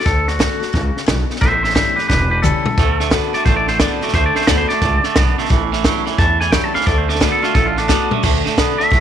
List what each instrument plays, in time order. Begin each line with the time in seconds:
0.00 snare
0.06 upright bass D2, steel-string acoustic guitar D3, clean electric guitar A4, kick, snare
0.28 clean electric guitar F#4, snare
0.39 steel-string acoustic guitar D3 A3 D4 F#4, kick, snare, hi-hat pedal
0.60 steel-string acoustic guitar D4 F#4, muted upright bass stroke, snare
0.73 upright bass C#2, steel-string acoustic guitar C#3, kick, snare
0.95 muted upright bass stroke, snare
1.06 upright bass B1, steel-string acoustic guitar B2, kick, snare, hi-hat pedal
1.30 snare
1.36 snare
1.41 upright bass A1, steel-string acoustic guitar A2, clean electric guitar C5 E5, kick, snare
1.63 clean electric guitar C5 E5, snare
1.70 snare
1.75 steel-string acoustic guitar E3 G3 C#4 E4, clean electric guitar C5 E5, kick, snare, hi-hat pedal
1.96 steel-string acoustic guitar C#4 E4, clean electric guitar G4 B4, muted upright bass stroke, snare
2.08 upright bass E1, steel-string acoustic guitar E2, clean electric guitar G4 B4, kick, snare
2.31 clean electric guitar G4 B4
2.42 steel-string acoustic guitar E3 G3 C#4 E4, clean electric guitar A4, kick, hi-hat pedal, mid tom
2.65 steel-string acoustic guitar C#4 E4, muted upright bass stroke, floor tom
2.78 upright bass D2, steel-string acoustic guitar D3, clean electric guitar D3 A3, kick, snare
3.00 clean electric guitar D3 A3, snare
3.10 steel-string acoustic guitar D3 A3 D4 F#4, clean electric guitar D3 B3, kick, snare, hi-hat pedal
3.33 clean electric guitar D3 A3 D5, steel-string acoustic guitar D4 F#4, muted upright bass stroke, snare
3.45 upright bass A1, steel-string acoustic guitar A2, clean electric guitar D3 A3 C5, kick, snare
3.56 clean electric guitar D5
3.68 clean electric guitar D3 A3 C5, snare
3.79 steel-string acoustic guitar D3 A3 D4 F#4, clean electric guitar D3 B3 D5, kick, snare, hi-hat pedal
3.92 clean electric guitar C5
4.01 clean electric guitar D3 A3 D5, steel-string acoustic guitar D4 F#4, muted upright bass stroke, snare
4.08 snare
4.13 upright bass D2, clean electric guitar D3 A3 C5, steel-string acoustic guitar D3, kick, snare
4.26 clean electric guitar D5
4.35 clean electric guitar D3 A3 C5, muted upright bass stroke, snare
4.41 snare
4.47 upright bass D2, clean electric guitar D3 B3 D5, steel-string acoustic guitar D3 A3 D4 F#4, kick, snare, hi-hat pedal
4.58 clean electric guitar C5
4.69 clean electric guitar D3 A3 D5, steel-string acoustic guitar D4 F#4, snare
4.81 upright bass C#2, steel-string acoustic guitar C#3, clean electric guitar D3 A3, kick, snare
5.04 clean electric guitar D3 A3, muted upright bass stroke, snare
5.16 upright bass B1, steel-string acoustic guitar B2, clean electric guitar D3 B3, kick, snare, hi-hat pedal
5.38 clean electric guitar D3 A3, muted upright bass stroke, snare
5.45 snare
5.50 upright bass A1, steel-string acoustic guitar A2, clean electric guitar A2 E3, kick, snare
5.72 clean electric guitar A2 E3, snare
5.84 clean electric guitar A2 F#3, steel-string acoustic guitar E3 G3 C#4 E4, kick, snare, hi-hat pedal
6.06 clean electric guitar A2 E3, steel-string acoustic guitar C#4 E4, muted upright bass stroke, snare
6.18 steel-string acoustic guitar E2, upright bass E2, clean electric guitar A2 E3 A5, kick, snare
6.41 clean electric guitar A2 E3 G#5, snare
6.52 clean electric guitar A2 F#3 G5, steel-string acoustic guitar E3 G3 C#4 E4, kick, snare, hi-hat pedal
6.64 clean electric guitar A5
6.74 clean electric guitar A2 E3 F5, steel-string acoustic guitar C#4 E4, muted upright bass stroke, snare
6.81 snare
6.86 upright bass D2, steel-string acoustic guitar D3, clean electric guitar D3 A3 D5, kick, snare
6.98 clean electric guitar C5
7.08 clean electric guitar D3 A3 D5, snare
7.15 snare
7.20 steel-string acoustic guitar D3 A3 D4 F#4, clean electric guitar D3 B3 C5, kick, snare, hi-hat pedal
7.32 clean electric guitar A4
7.42 clean electric guitar D3 A3 F4, steel-string acoustic guitar D4 F#4, muted upright bass stroke, snare
7.54 upright bass A1, steel-string acoustic guitar A2, clean electric guitar D3 A3 A4, kick, snare
7.66 clean electric guitar F4
7.76 clean electric guitar D3 A3 D4, snare
7.88 steel-string acoustic guitar D3 A3 D4 F#4, clean electric guitar D3 B3 D4, kick, snare, hi-hat pedal
8.11 clean electric guitar D3 A3, steel-string acoustic guitar F#4, muted upright bass stroke, floor tom
8.23 upright bass D2, steel-string acoustic guitar D3, clean electric guitar D3 A3, kick, snare, crash
8.45 clean electric guitar D3 A3, muted upright bass stroke, snare
8.56 upright bass B1, steel-string acoustic guitar D3 A3 D4 F#4, clean electric guitar D3 B3, kick, snare, hi-hat pedal
8.78 clean electric guitar D3 A3 E5, muted upright bass stroke, snare
8.90 upright bass A1, steel-string acoustic guitar A2, clean electric guitar D3 A3, kick, snare